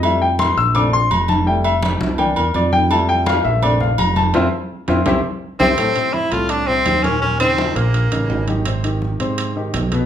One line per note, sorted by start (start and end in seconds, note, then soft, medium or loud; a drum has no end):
0.00 0.51 F2 medium
0.00 0.27 G3 medium
0.00 0.27 A3 soft
0.00 0.21 E5 medium
0.00 high conga soft
0.00 low agogo loud
0.04 0.28 E4 medium
0.21 0.39 G5 medium
0.21 high conga soft
0.39 0.57 C6 medium
0.39 high conga loud
0.39 low agogo medium
0.57 1.07 A#1 medium
0.57 0.75 E6 loud
0.57 high conga soft
0.75 0.99 A3 medium
0.75 0.99 C4 medium
0.75 0.99 D4 medium
0.75 0.93 D6 medium
0.75 high conga soft
0.75 low conga medium
0.75 low agogo loud
0.93 1.11 C6 loud
0.93 high conga soft
1.11 1.95 F1 loud
1.11 1.29 A#5 medium
1.11 high conga medium
1.11 low agogo loud
1.28 1.46 A5 medium
1.28 high conga medium
1.28 low agogo medium
1.46 1.70 G3 medium
1.46 1.71 A3 medium
1.46 1.71 E4 medium
1.46 1.64 G5 medium
1.46 high conga soft
1.64 1.76 E5 medium
1.64 high conga soft
1.64 low agogo loud
1.83 high conga loud
1.83 low agogo medium
2.01 2.34 C2 medium
2.01 high conga loud
2.18 2.42 E3 soft
2.18 2.43 A#3 soft
2.18 2.43 D4 medium
2.18 2.36 G5 medium
2.18 high conga soft
2.18 low agogo medium
2.36 2.54 E2 medium
2.36 2.54 A#4 medium
2.36 high conga soft
2.36 low agogo loud
2.54 3.39 F2 medium
2.54 2.73 D5 medium
2.54 high conga medium
2.54 low agogo medium
2.73 2.90 G5 loud
2.73 high conga medium
2.90 3.59 G3 medium
2.90 3.59 A3 soft
2.90 3.59 E4 medium
2.90 3.08 A5 medium
2.90 high conga soft
2.90 low agogo loud
3.08 3.26 G5 loud
3.08 high conga soft
3.26 3.44 F5 medium
3.26 high conga loud
3.26 low agogo medium
3.44 3.95 A#1 medium
3.44 3.62 E5 medium
3.44 high conga soft
3.62 3.86 A3 medium
3.62 3.87 C4 soft
3.62 3.87 D4 medium
3.62 3.80 D5 medium
3.62 high conga soft
3.62 low conga medium
3.62 low agogo loud
3.80 3.98 F5 medium
3.80 high conga soft
3.80 low conga medium
3.98 4.32 F1 loud
3.98 4.16 A#5 loud
3.98 high conga medium
3.98 low agogo loud
4.16 4.33 A5 medium
4.16 high conga medium
4.16 low agogo medium
4.34 4.48 F2 loud
4.34 4.46 C4 loud
4.34 4.46 E4 loud
4.34 4.46 F4 medium
4.34 high conga loud
4.34 high timbale loud
4.88 5.02 F2 medium
4.88 5.00 C4 medium
4.88 5.00 E4 medium
4.88 5.00 F4 medium
4.88 high conga medium
4.88 high timbale medium
5.06 5.20 C2 medium
5.06 5.18 C4 medium
5.06 5.18 E4 loud
5.06 5.18 G4 medium
5.06 high conga loud
5.06 high timbale loud
5.60 5.73 C2 loud
5.60 6.15 C4 medium
5.60 5.71 C4 medium
5.60 5.72 E4 medium
5.60 5.72 G4 medium
5.60 high conga loud
5.60 high timbale loud
5.78 5.93 A2 medium
5.78 5.93 A3 medium
5.78 5.93 A4 medium
5.78 high conga soft
5.78 high timbale medium
5.96 6.26 C3 medium
5.96 6.26 C4 medium
5.96 6.26 E4 medium
5.96 high conga soft
5.96 high timbale medium
6.14 6.34 E4 loud
6.14 high conga medium
6.14 low timbale medium
6.32 6.82 C2 medium
6.32 6.62 A2 medium
6.32 6.62 A3 medium
6.32 6.51 F4 medium
6.32 6.62 A4 medium
6.32 high conga soft
6.32 high timbale medium
6.49 6.69 D4 medium
6.49 high conga soft
6.49 high timbale medium
6.67 6.98 C3 medium
6.67 7.05 C4 medium
6.67 6.98 C4 medium
6.67 6.98 E4 medium
6.67 high conga soft
6.86 7.70 D#2 medium
6.86 high conga medium
6.86 high timbale medium
6.86 low timbale medium
7.03 7.19 A#2 medium
7.03 7.19 A#3 medium
7.03 7.21 C#4 medium
7.03 7.19 A#4 medium
7.03 high conga medium
7.03 high timbale medium
7.22 7.37 A#2 medium
7.22 7.37 A#3 medium
7.22 7.39 C#4 medium
7.22 7.37 A#4 medium
7.22 high conga soft
7.40 7.70 C#3 medium
7.40 7.77 C4 medium
7.40 7.70 C4 medium
7.40 7.70 D#4 medium
7.40 high conga soft
7.40 high timbale medium
7.58 high conga loud
7.58 low timbale soft
7.76 8.09 A#1 medium
7.76 8.06 A#2 medium
7.76 8.48 A#3 medium
7.76 8.06 A#3 medium
7.76 8.06 A#4 medium
7.76 high conga soft
7.76 high timbale medium
7.94 high conga soft
7.94 high timbale medium
8.12 8.29 A1 medium
8.12 8.27 C#3 medium
8.12 8.27 C#4 medium
8.12 8.27 D#4 medium
8.12 high conga soft
8.12 high timbale medium
8.30 9.14 G#1 medium
8.30 8.45 C#3 medium
8.30 8.45 C#4 medium
8.30 8.45 D#4 medium
8.30 high conga soft
8.30 low timbale medium
8.48 8.63 D#3 medium
8.48 8.63 D#4 medium
8.48 8.63 G4 medium
8.48 high conga medium
8.48 high timbale medium
8.65 8.81 C3 medium
8.65 8.81 C4 medium
8.65 8.81 C5 medium
8.65 high conga soft
8.65 high timbale loud
8.84 9.14 D#3 medium
8.84 9.14 D#4 medium
8.84 9.14 G4 medium
8.84 high conga soft
8.84 high timbale medium
9.02 high conga medium
9.02 low timbale medium
9.20 9.70 G#2 medium
9.20 9.50 C3 medium
9.20 9.50 C4 medium
9.20 9.50 C5 medium
9.20 high conga soft
9.20 high timbale medium
9.38 high conga soft
9.38 high timbale loud
9.56 9.86 D#3 medium
9.56 9.86 D#4 medium
9.56 9.86 G4 medium
9.56 high conga soft
9.74 10.06 B1 medium
9.74 high conga medium
9.74 high timbale medium
9.74 low timbale medium
9.92 10.06 B2 medium
9.92 10.06 B3 medium
9.92 10.06 B4 medium
9.92 high conga medium
9.92 high timbale medium